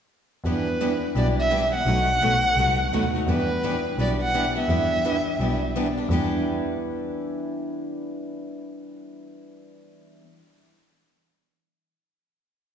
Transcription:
0.44 double bass E2, steel-string acoustic guitar E3 G3 B3 D4 E4 G4 B4, violin B4
0.81 steel-string acoustic guitar E3 G3 B3 D4 E4 G4 B4
1.15 double bass B1, steel-string acoustic guitar E3 G3 B3 D4 E4 G4 B4, violin D5
1.39 violin E5
1.50 steel-string acoustic guitar E3 G3 B3 D4 E4 G4 B4
1.73 steel-string acoustic guitar B3 D4 G4, violin F#5
1.85 double bass B1, steel-string acoustic guitar B2 F#3 A3 D#4 F#4 B4
2.21 double bass B1, steel-string acoustic guitar B2 F#3 A3 D#4 F#4 B4
2.56 double bass C2, steel-string acoustic guitar B2 F#3 A3 D#4 F#4 B4
2.92 double bass D#2, steel-string acoustic guitar B2 F#3 A3 D#4 F#4 B4
3.15 steel-string acoustic guitar A3 D#4 F#4
3.27 double bass E2, steel-string acoustic guitar E3 G3 B3 D4 E4 G4 B4
3.31 violin B4
3.63 steel-string acoustic guitar E3 G3 B3 D4 E4 G4 B4
3.97 double bass B1, steel-string acoustic guitar E3 G3 B3 D4 E4 G4 B4, violin D5
4.22 violin F#5
4.34 steel-string acoustic guitar E3 G3 B3 D4 E4 G4 B4
4.55 steel-string acoustic guitar B3 D4 G4, violin E5
4.68 double bass E2, steel-string acoustic guitar E3 G3 B3 D4 E4 G4 B4
5.05 steel-string acoustic guitar E3 G3 B3 D4 E4 G4 B4
5.39 double bass B1, steel-string acoustic guitar E3 G3 B3 D4 E4 G4 B4
5.76 steel-string acoustic guitar E3 G3 B3 D4 E4 G4 B4
5.98 steel-string acoustic guitar B3 D4 G4
6.09 double bass E2, steel-string acoustic guitar E3 G3 B3 D4
6.13 steel-string acoustic guitar E4 G4 B4

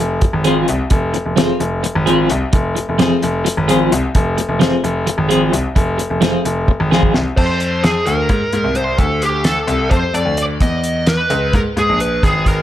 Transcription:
0.00 grand piano F1
0.21 muted clean electric guitar stroke, kick, closed hi-hat
0.33 grand piano G#1
0.44 clean electric guitar F3 C4 F4 G#4, closed hi-hat
0.67 grand piano C2, muted clean electric guitar stroke, closed hi-hat
0.90 grand piano F1, muted clean electric guitar stroke, kick, closed hi-hat
1.14 muted clean electric guitar stroke, closed hi-hat
1.26 grand piano F1
1.36 clean electric guitar F3 C4 F4 G#4, snare, closed hi-hat
1.60 grand piano F1, muted clean electric guitar stroke, closed hi-hat
1.83 muted clean electric guitar stroke, closed hi-hat
1.95 grand piano G#1
2.06 clean electric guitar F3 C4 F4 G#4, closed hi-hat
2.29 grand piano C2, muted clean electric guitar stroke, closed hi-hat
2.52 grand piano F1, muted clean electric guitar stroke, kick, closed hi-hat
2.75 muted clean electric guitar stroke, closed hi-hat
2.89 grand piano F1
2.98 clean electric guitar F3 C4 F4 G#4, snare, closed hi-hat
3.22 grand piano F1, muted clean electric guitar stroke, closed hi-hat
3.45 muted clean electric guitar stroke, closed hi-hat
3.57 grand piano G#1
3.68 clean electric guitar F3 C4 F4 G#4, closed hi-hat
3.92 grand piano C2, muted clean electric guitar stroke, closed hi-hat
4.15 grand piano F1, muted clean electric guitar stroke, kick, closed hi-hat
4.37 muted clean electric guitar stroke, closed hi-hat
4.49 grand piano F1
4.60 clean electric guitar F3 C4 F4 G#4, snare, closed hi-hat
4.83 grand piano F1, muted clean electric guitar stroke, closed hi-hat
5.07 muted clean electric guitar stroke, closed hi-hat
5.18 grand piano G#1
5.29 clean electric guitar F3 C4 F4 G#4, closed hi-hat
5.52 grand piano C2, muted clean electric guitar stroke, closed hi-hat
5.76 grand piano F1, muted clean electric guitar stroke, kick, closed hi-hat
5.98 muted clean electric guitar stroke, closed hi-hat
6.10 grand piano F1
6.21 clean electric guitar F3 C4 F4 G#4, snare, closed hi-hat
6.45 grand piano F1, muted clean electric guitar stroke, closed hi-hat
6.68 muted clean electric guitar stroke, kick
6.80 grand piano G#1
6.91 clean electric guitar F3 C4 F4 G#4, snare
7.03 kick
7.14 grand piano C2, muted clean electric guitar stroke, snare
7.37 grand piano F2, lead electric guitar C5, kick, crash
7.60 closed hi-hat
7.83 lead electric guitar G#4, snare, closed hi-hat
8.06 grand piano D2, lead electric guitar A#4, closed hi-hat
8.29 grand piano G#2, kick, closed hi-hat
8.53 grand piano G#2, closed hi-hat
8.64 grand piano C2
8.75 lead electric guitar C5, closed hi-hat
8.98 grand piano D2, lead electric guitar A4, kick, closed hi-hat
9.22 lead electric guitar G4, closed hi-hat
9.44 lead electric guitar A4, snare, closed hi-hat
9.67 grand piano C2, closed hi-hat
9.91 grand piano F2, lead electric guitar C5, kick, closed hi-hat
10.14 grand piano F2, lead electric guitar D5, closed hi-hat
10.25 grand piano D2
10.37 lead electric guitar D5, closed hi-hat
10.61 grand piano E2, lead electric guitar D#5, kick, closed hi-hat
10.84 closed hi-hat
11.07 lead electric guitar B4, snare, closed hi-hat
11.30 grand piano C#2, closed hi-hat
11.53 grand piano G#2, lead electric guitar A#4, kick, closed hi-hat
11.77 grand piano G#2, lead electric guitar G#4, closed hi-hat
11.89 grand piano A#1
12.00 lead electric guitar B4, closed hi-hat
12.23 grand piano G#1, lead electric guitar G#4, kick, closed hi-hat
12.46 lead electric guitar A#4, kick, closed hi-hat

